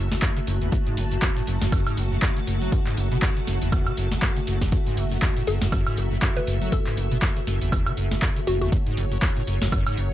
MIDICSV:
0, 0, Header, 1, 6, 480
1, 0, Start_track
1, 0, Key_signature, 3, "minor"
1, 0, Tempo, 500000
1, 695, Time_signature, 4, 2, 24, 8
1, 9730, End_track
2, 0, Start_track
2, 0, Title_t, "String machine"
2, 0, Program_c, 0, 50
2, 0, Note_on_c, 0, 57, 81
2, 0, Note_on_c, 0, 66, 77
2, 0, Note_on_c, 0, 76, 92
2, 684, Note_off_c, 0, 76, 0
2, 694, Note_on_c, 0, 81, 91
2, 4523, Note_off_c, 0, 81, 0
2, 4534, Note_on_c, 0, 76, 94
2, 8363, Note_off_c, 0, 76, 0
2, 8374, Note_on_c, 0, 73, 93
2, 9730, Note_off_c, 0, 57, 0
2, 9730, Note_off_c, 0, 66, 0
2, 9730, Note_off_c, 0, 73, 0
2, 9730, End_track
3, 0, Start_track
3, 0, Title_t, "Synth pluck"
3, 0, Program_c, 1, 84
3, 0, Note_on_c, 1, 64, 93
3, 173, Note_off_c, 1, 64, 0
3, 5255, Note_on_c, 1, 69, 97
3, 5452, Note_off_c, 1, 69, 0
3, 6111, Note_on_c, 1, 71, 91
3, 6434, Note_off_c, 1, 71, 0
3, 6455, Note_on_c, 1, 69, 91
3, 6651, Note_off_c, 1, 69, 0
3, 8134, Note_on_c, 1, 66, 90
3, 8222, Note_off_c, 1, 66, 0
3, 8270, Note_on_c, 1, 66, 79
3, 8337, Note_off_c, 1, 66, 0
3, 9730, End_track
4, 0, Start_track
4, 0, Title_t, "Acid bass"
4, 0, Program_c, 2, 38
4, 111, Note_on_c, 2, 40, 80
4, 146, Note_off_c, 2, 40, 0
4, 215, Note_on_c, 2, 42, 86
4, 290, Note_off_c, 2, 42, 0
4, 351, Note_on_c, 2, 49, 76
4, 386, Note_off_c, 2, 49, 0
4, 455, Note_on_c, 2, 42, 78
4, 567, Note_off_c, 2, 42, 0
4, 591, Note_on_c, 2, 40, 77
4, 677, Note_off_c, 2, 40, 0
4, 695, Note_on_c, 2, 42, 107
4, 740, Note_off_c, 2, 42, 0
4, 832, Note_on_c, 2, 44, 79
4, 935, Note_on_c, 2, 42, 103
4, 949, Note_off_c, 2, 44, 0
4, 1010, Note_off_c, 2, 42, 0
4, 1071, Note_on_c, 2, 42, 79
4, 1128, Note_off_c, 2, 42, 0
4, 1174, Note_on_c, 2, 40, 88
4, 1250, Note_off_c, 2, 40, 0
4, 1311, Note_on_c, 2, 45, 77
4, 1368, Note_off_c, 2, 45, 0
4, 1415, Note_on_c, 2, 42, 78
4, 1527, Note_off_c, 2, 42, 0
4, 1551, Note_on_c, 2, 42, 101
4, 1608, Note_off_c, 2, 42, 0
4, 1654, Note_on_c, 2, 42, 99
4, 1767, Note_off_c, 2, 42, 0
4, 1790, Note_on_c, 2, 44, 79
4, 1894, Note_on_c, 2, 42, 102
4, 1908, Note_off_c, 2, 44, 0
4, 2007, Note_off_c, 2, 42, 0
4, 2030, Note_on_c, 2, 42, 80
4, 2088, Note_off_c, 2, 42, 0
4, 2133, Note_on_c, 2, 42, 85
4, 2209, Note_off_c, 2, 42, 0
4, 2270, Note_on_c, 2, 49, 80
4, 2305, Note_off_c, 2, 49, 0
4, 2374, Note_on_c, 2, 42, 79
4, 2487, Note_off_c, 2, 42, 0
4, 2511, Note_on_c, 2, 54, 81
4, 2613, Note_on_c, 2, 40, 87
4, 2628, Note_off_c, 2, 54, 0
4, 2689, Note_off_c, 2, 40, 0
4, 2750, Note_on_c, 2, 44, 80
4, 2854, Note_on_c, 2, 42, 105
4, 2868, Note_off_c, 2, 44, 0
4, 2967, Note_off_c, 2, 42, 0
4, 2991, Note_on_c, 2, 47, 105
4, 3048, Note_off_c, 2, 47, 0
4, 3094, Note_on_c, 2, 42, 85
4, 3169, Note_off_c, 2, 42, 0
4, 3230, Note_on_c, 2, 49, 77
4, 3265, Note_off_c, 2, 49, 0
4, 3334, Note_on_c, 2, 42, 75
4, 3447, Note_off_c, 2, 42, 0
4, 3471, Note_on_c, 2, 40, 78
4, 3556, Note_off_c, 2, 40, 0
4, 3574, Note_on_c, 2, 40, 84
4, 3711, Note_on_c, 2, 49, 103
4, 3725, Note_off_c, 2, 40, 0
4, 3768, Note_off_c, 2, 49, 0
4, 3814, Note_on_c, 2, 42, 77
4, 3927, Note_off_c, 2, 42, 0
4, 3951, Note_on_c, 2, 40, 80
4, 3985, Note_off_c, 2, 40, 0
4, 4055, Note_on_c, 2, 42, 84
4, 4130, Note_off_c, 2, 42, 0
4, 4191, Note_on_c, 2, 49, 77
4, 4226, Note_off_c, 2, 49, 0
4, 4295, Note_on_c, 2, 42, 77
4, 4408, Note_off_c, 2, 42, 0
4, 4431, Note_on_c, 2, 40, 77
4, 4516, Note_off_c, 2, 40, 0
4, 4534, Note_on_c, 2, 42, 108
4, 4579, Note_off_c, 2, 42, 0
4, 4671, Note_on_c, 2, 44, 79
4, 4774, Note_on_c, 2, 42, 102
4, 4789, Note_off_c, 2, 44, 0
4, 4850, Note_off_c, 2, 42, 0
4, 4911, Note_on_c, 2, 42, 79
4, 4968, Note_off_c, 2, 42, 0
4, 5014, Note_on_c, 2, 40, 86
4, 5090, Note_off_c, 2, 40, 0
4, 5151, Note_on_c, 2, 45, 78
4, 5208, Note_off_c, 2, 45, 0
4, 5254, Note_on_c, 2, 42, 77
4, 5367, Note_off_c, 2, 42, 0
4, 5391, Note_on_c, 2, 42, 107
4, 5448, Note_off_c, 2, 42, 0
4, 5495, Note_on_c, 2, 42, 102
4, 5608, Note_off_c, 2, 42, 0
4, 5631, Note_on_c, 2, 44, 80
4, 5735, Note_on_c, 2, 42, 100
4, 5749, Note_off_c, 2, 44, 0
4, 5847, Note_off_c, 2, 42, 0
4, 5871, Note_on_c, 2, 42, 82
4, 5928, Note_off_c, 2, 42, 0
4, 5974, Note_on_c, 2, 42, 86
4, 6049, Note_off_c, 2, 42, 0
4, 6111, Note_on_c, 2, 49, 77
4, 6145, Note_off_c, 2, 49, 0
4, 6214, Note_on_c, 2, 42, 79
4, 6327, Note_off_c, 2, 42, 0
4, 6351, Note_on_c, 2, 54, 80
4, 6454, Note_on_c, 2, 40, 89
4, 6469, Note_off_c, 2, 54, 0
4, 6530, Note_off_c, 2, 40, 0
4, 6590, Note_on_c, 2, 44, 81
4, 6693, Note_on_c, 2, 42, 103
4, 6708, Note_off_c, 2, 44, 0
4, 6807, Note_off_c, 2, 42, 0
4, 6830, Note_on_c, 2, 47, 108
4, 6888, Note_off_c, 2, 47, 0
4, 6934, Note_on_c, 2, 42, 84
4, 7009, Note_off_c, 2, 42, 0
4, 7070, Note_on_c, 2, 49, 76
4, 7105, Note_off_c, 2, 49, 0
4, 7173, Note_on_c, 2, 42, 81
4, 7287, Note_off_c, 2, 42, 0
4, 7310, Note_on_c, 2, 40, 77
4, 7396, Note_off_c, 2, 40, 0
4, 7413, Note_on_c, 2, 40, 84
4, 7549, Note_on_c, 2, 49, 108
4, 7564, Note_off_c, 2, 40, 0
4, 7607, Note_off_c, 2, 49, 0
4, 7652, Note_on_c, 2, 42, 78
4, 7766, Note_off_c, 2, 42, 0
4, 7789, Note_on_c, 2, 40, 81
4, 7824, Note_off_c, 2, 40, 0
4, 7892, Note_on_c, 2, 42, 87
4, 7969, Note_off_c, 2, 42, 0
4, 8029, Note_on_c, 2, 49, 78
4, 8064, Note_off_c, 2, 49, 0
4, 8133, Note_on_c, 2, 42, 77
4, 8246, Note_off_c, 2, 42, 0
4, 8270, Note_on_c, 2, 40, 79
4, 8356, Note_off_c, 2, 40, 0
4, 8373, Note_on_c, 2, 42, 106
4, 8419, Note_off_c, 2, 42, 0
4, 8510, Note_on_c, 2, 44, 80
4, 8614, Note_on_c, 2, 42, 104
4, 8628, Note_off_c, 2, 44, 0
4, 8690, Note_off_c, 2, 42, 0
4, 8750, Note_on_c, 2, 42, 81
4, 8808, Note_off_c, 2, 42, 0
4, 8854, Note_on_c, 2, 40, 86
4, 8930, Note_off_c, 2, 40, 0
4, 8991, Note_on_c, 2, 45, 78
4, 9048, Note_off_c, 2, 45, 0
4, 9094, Note_on_c, 2, 42, 77
4, 9207, Note_off_c, 2, 42, 0
4, 9231, Note_on_c, 2, 42, 105
4, 9288, Note_off_c, 2, 42, 0
4, 9334, Note_on_c, 2, 42, 106
4, 9447, Note_off_c, 2, 42, 0
4, 9470, Note_on_c, 2, 44, 80
4, 9574, Note_on_c, 2, 42, 106
4, 9589, Note_off_c, 2, 44, 0
4, 9687, Note_off_c, 2, 42, 0
4, 9730, End_track
5, 0, Start_track
5, 0, Title_t, "Sub bass"
5, 0, Program_c, 3, 38
5, 0, Note_on_c, 3, 30, 88
5, 182, Note_off_c, 3, 30, 0
5, 455, Note_on_c, 3, 30, 92
5, 662, Note_off_c, 3, 30, 0
5, 934, Note_on_c, 3, 30, 101
5, 1141, Note_off_c, 3, 30, 0
5, 1414, Note_on_c, 3, 30, 84
5, 1529, Note_off_c, 3, 30, 0
5, 1551, Note_on_c, 3, 30, 97
5, 1748, Note_off_c, 3, 30, 0
5, 1894, Note_on_c, 3, 30, 87
5, 2102, Note_off_c, 3, 30, 0
5, 2373, Note_on_c, 3, 30, 94
5, 2581, Note_off_c, 3, 30, 0
5, 2855, Note_on_c, 3, 30, 101
5, 3062, Note_off_c, 3, 30, 0
5, 3334, Note_on_c, 3, 30, 84
5, 3449, Note_off_c, 3, 30, 0
5, 3471, Note_on_c, 3, 30, 96
5, 3668, Note_off_c, 3, 30, 0
5, 3814, Note_on_c, 3, 30, 89
5, 4021, Note_off_c, 3, 30, 0
5, 4294, Note_on_c, 3, 30, 89
5, 4502, Note_off_c, 3, 30, 0
5, 4775, Note_on_c, 3, 30, 98
5, 4982, Note_off_c, 3, 30, 0
5, 5254, Note_on_c, 3, 30, 80
5, 5370, Note_off_c, 3, 30, 0
5, 5390, Note_on_c, 3, 30, 94
5, 5588, Note_off_c, 3, 30, 0
5, 5733, Note_on_c, 3, 30, 86
5, 5941, Note_off_c, 3, 30, 0
5, 6214, Note_on_c, 3, 30, 91
5, 6421, Note_off_c, 3, 30, 0
5, 6693, Note_on_c, 3, 30, 98
5, 6901, Note_off_c, 3, 30, 0
5, 7174, Note_on_c, 3, 30, 82
5, 7289, Note_off_c, 3, 30, 0
5, 7311, Note_on_c, 3, 30, 96
5, 7508, Note_off_c, 3, 30, 0
5, 7654, Note_on_c, 3, 30, 84
5, 7861, Note_off_c, 3, 30, 0
5, 8134, Note_on_c, 3, 30, 91
5, 8341, Note_off_c, 3, 30, 0
5, 8614, Note_on_c, 3, 30, 99
5, 8822, Note_off_c, 3, 30, 0
5, 9094, Note_on_c, 3, 30, 83
5, 9209, Note_off_c, 3, 30, 0
5, 9231, Note_on_c, 3, 30, 97
5, 9428, Note_off_c, 3, 30, 0
5, 9574, Note_on_c, 3, 30, 89
5, 9730, Note_off_c, 3, 30, 0
5, 9730, End_track
6, 0, Start_track
6, 0, Title_t, "Drums"
6, 111, Note_on_c, 9, 38, 60
6, 207, Note_off_c, 9, 38, 0
6, 212, Note_on_c, 9, 39, 127
6, 214, Note_on_c, 9, 36, 121
6, 214, Note_on_c, 9, 42, 84
6, 308, Note_off_c, 9, 39, 0
6, 310, Note_off_c, 9, 36, 0
6, 310, Note_off_c, 9, 42, 0
6, 351, Note_on_c, 9, 42, 38
6, 447, Note_off_c, 9, 42, 0
6, 454, Note_on_c, 9, 46, 112
6, 550, Note_off_c, 9, 46, 0
6, 591, Note_on_c, 9, 42, 39
6, 687, Note_off_c, 9, 42, 0
6, 693, Note_on_c, 9, 42, 80
6, 694, Note_on_c, 9, 36, 127
6, 789, Note_off_c, 9, 42, 0
6, 790, Note_off_c, 9, 36, 0
6, 831, Note_on_c, 9, 42, 36
6, 927, Note_off_c, 9, 42, 0
6, 934, Note_on_c, 9, 46, 113
6, 1030, Note_off_c, 9, 46, 0
6, 1070, Note_on_c, 9, 42, 37
6, 1166, Note_off_c, 9, 42, 0
6, 1172, Note_on_c, 9, 39, 125
6, 1174, Note_on_c, 9, 36, 127
6, 1174, Note_on_c, 9, 42, 78
6, 1268, Note_off_c, 9, 39, 0
6, 1270, Note_off_c, 9, 36, 0
6, 1270, Note_off_c, 9, 42, 0
6, 1311, Note_on_c, 9, 42, 37
6, 1407, Note_off_c, 9, 42, 0
6, 1414, Note_on_c, 9, 46, 116
6, 1510, Note_off_c, 9, 46, 0
6, 1551, Note_on_c, 9, 38, 80
6, 1551, Note_on_c, 9, 42, 52
6, 1647, Note_off_c, 9, 38, 0
6, 1647, Note_off_c, 9, 42, 0
6, 1654, Note_on_c, 9, 36, 125
6, 1655, Note_on_c, 9, 42, 79
6, 1655, Note_on_c, 9, 76, 60
6, 1750, Note_off_c, 9, 36, 0
6, 1751, Note_off_c, 9, 42, 0
6, 1751, Note_off_c, 9, 76, 0
6, 1792, Note_on_c, 9, 42, 54
6, 1792, Note_on_c, 9, 76, 64
6, 1888, Note_off_c, 9, 42, 0
6, 1888, Note_off_c, 9, 76, 0
6, 1895, Note_on_c, 9, 46, 110
6, 1991, Note_off_c, 9, 46, 0
6, 2133, Note_on_c, 9, 39, 127
6, 2134, Note_on_c, 9, 36, 124
6, 2135, Note_on_c, 9, 42, 84
6, 2229, Note_off_c, 9, 39, 0
6, 2230, Note_off_c, 9, 36, 0
6, 2231, Note_off_c, 9, 42, 0
6, 2271, Note_on_c, 9, 42, 38
6, 2367, Note_off_c, 9, 42, 0
6, 2375, Note_on_c, 9, 46, 114
6, 2471, Note_off_c, 9, 46, 0
6, 2511, Note_on_c, 9, 42, 38
6, 2607, Note_off_c, 9, 42, 0
6, 2614, Note_on_c, 9, 36, 126
6, 2614, Note_on_c, 9, 42, 76
6, 2710, Note_off_c, 9, 36, 0
6, 2710, Note_off_c, 9, 42, 0
6, 2750, Note_on_c, 9, 39, 37
6, 2751, Note_on_c, 9, 46, 66
6, 2846, Note_off_c, 9, 39, 0
6, 2847, Note_off_c, 9, 46, 0
6, 2855, Note_on_c, 9, 46, 110
6, 2951, Note_off_c, 9, 46, 0
6, 2992, Note_on_c, 9, 42, 36
6, 3088, Note_off_c, 9, 42, 0
6, 3093, Note_on_c, 9, 39, 119
6, 3094, Note_on_c, 9, 36, 127
6, 3095, Note_on_c, 9, 42, 75
6, 3189, Note_off_c, 9, 39, 0
6, 3190, Note_off_c, 9, 36, 0
6, 3191, Note_off_c, 9, 42, 0
6, 3232, Note_on_c, 9, 42, 35
6, 3328, Note_off_c, 9, 42, 0
6, 3335, Note_on_c, 9, 38, 37
6, 3335, Note_on_c, 9, 46, 111
6, 3431, Note_off_c, 9, 38, 0
6, 3431, Note_off_c, 9, 46, 0
6, 3472, Note_on_c, 9, 42, 51
6, 3568, Note_off_c, 9, 42, 0
6, 3574, Note_on_c, 9, 36, 126
6, 3575, Note_on_c, 9, 42, 78
6, 3575, Note_on_c, 9, 76, 61
6, 3670, Note_off_c, 9, 36, 0
6, 3671, Note_off_c, 9, 42, 0
6, 3671, Note_off_c, 9, 76, 0
6, 3711, Note_on_c, 9, 42, 51
6, 3711, Note_on_c, 9, 76, 66
6, 3807, Note_off_c, 9, 42, 0
6, 3807, Note_off_c, 9, 76, 0
6, 3814, Note_on_c, 9, 46, 110
6, 3910, Note_off_c, 9, 46, 0
6, 3951, Note_on_c, 9, 38, 63
6, 4047, Note_off_c, 9, 38, 0
6, 4053, Note_on_c, 9, 39, 120
6, 4054, Note_on_c, 9, 36, 124
6, 4054, Note_on_c, 9, 42, 81
6, 4149, Note_off_c, 9, 39, 0
6, 4150, Note_off_c, 9, 36, 0
6, 4150, Note_off_c, 9, 42, 0
6, 4191, Note_on_c, 9, 42, 37
6, 4287, Note_off_c, 9, 42, 0
6, 4294, Note_on_c, 9, 46, 109
6, 4390, Note_off_c, 9, 46, 0
6, 4431, Note_on_c, 9, 36, 61
6, 4431, Note_on_c, 9, 38, 66
6, 4431, Note_on_c, 9, 42, 36
6, 4527, Note_off_c, 9, 36, 0
6, 4527, Note_off_c, 9, 38, 0
6, 4527, Note_off_c, 9, 42, 0
6, 4533, Note_on_c, 9, 42, 76
6, 4534, Note_on_c, 9, 36, 125
6, 4629, Note_off_c, 9, 42, 0
6, 4630, Note_off_c, 9, 36, 0
6, 4670, Note_on_c, 9, 42, 35
6, 4766, Note_off_c, 9, 42, 0
6, 4774, Note_on_c, 9, 46, 110
6, 4870, Note_off_c, 9, 46, 0
6, 4910, Note_on_c, 9, 42, 37
6, 5006, Note_off_c, 9, 42, 0
6, 5013, Note_on_c, 9, 39, 117
6, 5014, Note_on_c, 9, 36, 124
6, 5014, Note_on_c, 9, 42, 76
6, 5109, Note_off_c, 9, 39, 0
6, 5110, Note_off_c, 9, 36, 0
6, 5110, Note_off_c, 9, 42, 0
6, 5151, Note_on_c, 9, 42, 36
6, 5247, Note_off_c, 9, 42, 0
6, 5254, Note_on_c, 9, 46, 109
6, 5350, Note_off_c, 9, 46, 0
6, 5391, Note_on_c, 9, 38, 89
6, 5391, Note_on_c, 9, 42, 51
6, 5487, Note_off_c, 9, 38, 0
6, 5487, Note_off_c, 9, 42, 0
6, 5494, Note_on_c, 9, 36, 119
6, 5494, Note_on_c, 9, 42, 76
6, 5494, Note_on_c, 9, 76, 61
6, 5590, Note_off_c, 9, 36, 0
6, 5590, Note_off_c, 9, 42, 0
6, 5590, Note_off_c, 9, 76, 0
6, 5631, Note_on_c, 9, 42, 52
6, 5631, Note_on_c, 9, 76, 67
6, 5727, Note_off_c, 9, 42, 0
6, 5727, Note_off_c, 9, 76, 0
6, 5735, Note_on_c, 9, 46, 107
6, 5831, Note_off_c, 9, 46, 0
6, 5973, Note_on_c, 9, 39, 122
6, 5974, Note_on_c, 9, 36, 117
6, 5974, Note_on_c, 9, 42, 81
6, 6069, Note_off_c, 9, 39, 0
6, 6070, Note_off_c, 9, 36, 0
6, 6070, Note_off_c, 9, 42, 0
6, 6111, Note_on_c, 9, 42, 36
6, 6207, Note_off_c, 9, 42, 0
6, 6214, Note_on_c, 9, 46, 109
6, 6310, Note_off_c, 9, 46, 0
6, 6351, Note_on_c, 9, 42, 36
6, 6447, Note_off_c, 9, 42, 0
6, 6454, Note_on_c, 9, 36, 116
6, 6454, Note_on_c, 9, 42, 81
6, 6550, Note_off_c, 9, 36, 0
6, 6550, Note_off_c, 9, 42, 0
6, 6590, Note_on_c, 9, 39, 36
6, 6591, Note_on_c, 9, 46, 59
6, 6686, Note_off_c, 9, 39, 0
6, 6687, Note_off_c, 9, 46, 0
6, 6694, Note_on_c, 9, 46, 105
6, 6790, Note_off_c, 9, 46, 0
6, 6831, Note_on_c, 9, 42, 38
6, 6927, Note_off_c, 9, 42, 0
6, 6932, Note_on_c, 9, 39, 117
6, 6934, Note_on_c, 9, 36, 118
6, 6934, Note_on_c, 9, 42, 82
6, 7028, Note_off_c, 9, 39, 0
6, 7030, Note_off_c, 9, 36, 0
6, 7030, Note_off_c, 9, 42, 0
6, 7070, Note_on_c, 9, 42, 38
6, 7166, Note_off_c, 9, 42, 0
6, 7174, Note_on_c, 9, 38, 40
6, 7174, Note_on_c, 9, 46, 109
6, 7270, Note_off_c, 9, 38, 0
6, 7270, Note_off_c, 9, 46, 0
6, 7310, Note_on_c, 9, 42, 52
6, 7406, Note_off_c, 9, 42, 0
6, 7414, Note_on_c, 9, 36, 115
6, 7414, Note_on_c, 9, 42, 80
6, 7414, Note_on_c, 9, 76, 65
6, 7510, Note_off_c, 9, 36, 0
6, 7510, Note_off_c, 9, 42, 0
6, 7510, Note_off_c, 9, 76, 0
6, 7550, Note_on_c, 9, 42, 54
6, 7550, Note_on_c, 9, 76, 71
6, 7646, Note_off_c, 9, 42, 0
6, 7646, Note_off_c, 9, 76, 0
6, 7653, Note_on_c, 9, 46, 101
6, 7749, Note_off_c, 9, 46, 0
6, 7790, Note_on_c, 9, 38, 65
6, 7886, Note_off_c, 9, 38, 0
6, 7892, Note_on_c, 9, 39, 121
6, 7894, Note_on_c, 9, 36, 115
6, 7894, Note_on_c, 9, 42, 86
6, 7988, Note_off_c, 9, 39, 0
6, 7990, Note_off_c, 9, 36, 0
6, 7990, Note_off_c, 9, 42, 0
6, 8030, Note_on_c, 9, 42, 38
6, 8126, Note_off_c, 9, 42, 0
6, 8134, Note_on_c, 9, 46, 109
6, 8230, Note_off_c, 9, 46, 0
6, 8271, Note_on_c, 9, 42, 38
6, 8367, Note_off_c, 9, 42, 0
6, 8374, Note_on_c, 9, 36, 113
6, 8374, Note_on_c, 9, 42, 85
6, 8470, Note_off_c, 9, 36, 0
6, 8470, Note_off_c, 9, 42, 0
6, 8510, Note_on_c, 9, 42, 38
6, 8606, Note_off_c, 9, 42, 0
6, 8614, Note_on_c, 9, 46, 103
6, 8710, Note_off_c, 9, 46, 0
6, 8751, Note_on_c, 9, 42, 40
6, 8847, Note_off_c, 9, 42, 0
6, 8853, Note_on_c, 9, 39, 118
6, 8854, Note_on_c, 9, 36, 120
6, 8855, Note_on_c, 9, 42, 82
6, 8949, Note_off_c, 9, 39, 0
6, 8950, Note_off_c, 9, 36, 0
6, 8951, Note_off_c, 9, 42, 0
6, 8991, Note_on_c, 9, 42, 38
6, 9087, Note_off_c, 9, 42, 0
6, 9095, Note_on_c, 9, 46, 104
6, 9191, Note_off_c, 9, 46, 0
6, 9231, Note_on_c, 9, 38, 90
6, 9231, Note_on_c, 9, 42, 57
6, 9327, Note_off_c, 9, 38, 0
6, 9327, Note_off_c, 9, 42, 0
6, 9334, Note_on_c, 9, 36, 117
6, 9335, Note_on_c, 9, 42, 83
6, 9335, Note_on_c, 9, 76, 67
6, 9430, Note_off_c, 9, 36, 0
6, 9431, Note_off_c, 9, 42, 0
6, 9431, Note_off_c, 9, 76, 0
6, 9471, Note_on_c, 9, 42, 56
6, 9471, Note_on_c, 9, 76, 72
6, 9567, Note_off_c, 9, 42, 0
6, 9567, Note_off_c, 9, 76, 0
6, 9574, Note_on_c, 9, 46, 102
6, 9670, Note_off_c, 9, 46, 0
6, 9730, End_track
0, 0, End_of_file